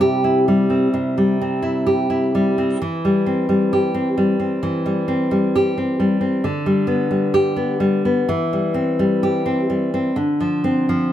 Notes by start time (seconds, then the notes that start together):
Already playing: C3 G3 C4 E4
0.01 G4
0.24 E4
0.48 G3
0.70 C4
0.94 C3
1.18 G3
1.41 C4
1.62 E4
1.86 G4
2.10 E4
2.35 G3
2.58 C4
2.82 E3
3.05 G3
3.26 C4
3.49 G3
3.73 G4
3.94 C4
4.18 G3
4.39 C4
4.63 E3
4.86 G3
5.08 C4
5.31 G3
5.56 G4
5.78 C4
6.00 G3
6.21 C4
6.44 D3
6.66 G3
6.87 B3
7.11 G3
7.34 G4
7.56 B3
7.80 G3
8.05 B3
8.29 E3
8.53 G3
8.74 C4
8.99 G3
9.23 G4
9.46 C4
9.70 G3
9.94 C4
10.16 D3
10.40 F3
10.64 C4
10.89 F3